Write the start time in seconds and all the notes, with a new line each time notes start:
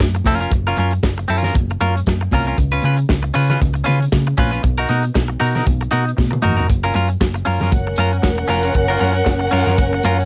0.00 F#2, kick, snare, tambourine
0.15 muted clean electric guitar stroke, closed hi-hat
0.24 F1 C#4 F4 A#4, kick, open hi-hat, high conga
0.41 C#4 F4 A#4, closed hi-hat
0.51 F#1, muted clean electric guitar stroke, kick, closed hi-hat, muted conga
0.67 C#4 F4 A#4
0.77 F#2 C#4 F4 A#4, closed hi-hat, muted conga
0.91 muted clean electric guitar stroke, closed hi-hat
1.03 F#1, muted clean electric guitar stroke, kick, snare, tambourine, high conga
1.18 muted clean electric guitar stroke, closed hi-hat
1.28 F#2 C#4 F4 A#4, open hi-hat
1.43 C#4 F4 A#4, snare, closed hi-hat, low conga
1.54 F#1, muted clean electric guitar stroke, kick, closed hi-hat, muted conga
1.70 muted clean electric guitar stroke, closed hi-hat
1.81 F#2 C#4 F4 A#4, closed hi-hat, muted conga
1.96 muted clean electric guitar stroke, closed hi-hat
2.06 F#2, muted clean electric guitar stroke, kick, snare, tambourine, high conga
2.21 muted clean electric guitar stroke
2.31 C2 C#4 F4 A#4, kick, open hi-hat, high conga
2.47 C#4 F4 A#4, closed hi-hat
2.58 C#2, muted clean electric guitar stroke, kick, closed hi-hat
2.71 C#4 F4 B4, closed hi-hat
2.82 C#3 C#4 F4 B4, closed hi-hat, muted conga
2.96 muted clean electric guitar stroke, closed hi-hat
3.09 C#2, muted clean electric guitar stroke, kick, snare, tambourine, high conga
3.23 muted clean electric guitar stroke
3.34 C#3 C#4 F4 B4, open hi-hat
3.49 C#4 F4 B4, snare, closed hi-hat, low conga
3.61 C#2, kick, closed hi-hat, muted conga
3.74 muted clean electric guitar stroke, closed hi-hat
3.84 C#3 C#4 F4 B4, closed hi-hat, muted conga, low conga
4.00 muted clean electric guitar stroke, closed hi-hat
4.12 C#3, muted clean electric guitar stroke, kick, snare, tambourine, high conga
4.26 muted clean electric guitar stroke, closed hi-hat
4.38 A#1 C#4 F4 B4, kick, open hi-hat, high conga
4.51 C#4 F4 B4, closed hi-hat
4.63 B1, muted clean electric guitar stroke, kick, closed hi-hat
4.77 D#4 F#4 A#4, closed hi-hat
4.88 B2 D#4 F#4 A#4, closed hi-hat, muted conga
5.03 closed hi-hat
5.14 B1, muted clean electric guitar stroke, kick, snare, tambourine, high conga
5.28 muted clean electric guitar stroke
5.40 B2 D#4 F#4 A#4, open hi-hat
5.55 D#4 F#4 A#4, snare, closed hi-hat, low conga
5.66 B1, muted clean electric guitar stroke, kick, closed hi-hat, muted conga
5.81 muted clean electric guitar stroke, closed hi-hat
5.91 B2 D#4 F#4 A#4, closed hi-hat, muted conga
6.05 muted clean electric guitar stroke, closed hi-hat
6.17 B2, muted clean electric guitar stroke, kick, snare, tambourine, high conga
6.31 muted clean electric guitar stroke, high tom
6.42 F1 D#4 F#4 A#4, mid tom, high conga
6.57 D#4 F#4 A#4, floor tom
6.68 F#1, muted clean electric guitar stroke, kick, closed hi-hat
6.84 C#4 F4 A#4
6.94 F#2 C#4 F4 A#4, closed hi-hat, muted conga
7.08 muted clean electric guitar stroke, closed hi-hat
7.21 F#1, muted clean electric guitar stroke, kick, snare, tambourine, high conga
7.34 muted clean electric guitar stroke, closed hi-hat
7.45 F#2 C#4 F4 A#4, open hi-hat
7.60 F#2 C#4 F4 A#4, snare, closed hi-hat, low conga
7.71 F#1 C#4 A#4 F#5, muted clean electric guitar stroke, kick, closed hi-hat, muted conga
7.87 muted clean electric guitar stroke
7.96 F#2 C#4 F4 A#4, closed hi-hat, muted conga
8.13 muted clean electric guitar stroke, closed hi-hat
8.22 E1, muted clean electric guitar stroke, kick, snare, tambourine, high conga
8.37 muted clean electric guitar stroke, closed hi-hat
8.48 F1 C#4 F4 A#4, open hi-hat, high conga
8.63 C#4 F4 A#4, closed hi-hat
8.74 F#1, muted clean electric guitar stroke, kick, closed hi-hat
8.88 C#4 F4 A#4
8.99 F#2 C#4 F4 A#4, closed hi-hat, muted conga
9.13 muted clean electric guitar stroke, closed hi-hat
9.24 F#1, muted clean electric guitar stroke, kick, snare, tambourine, high conga
9.39 muted clean electric guitar stroke, closed hi-hat
9.51 F#2 C#4 F4 A#4, open hi-hat
9.66 F#2 C#4 F4 A#4, snare, closed hi-hat, low conga
9.78 F#1, muted clean electric guitar stroke, kick, closed hi-hat, muted conga
9.93 muted clean electric guitar stroke
10.03 F#2 C#4 F4 A#4, closed hi-hat, muted conga
10.19 muted clean electric guitar stroke, closed hi-hat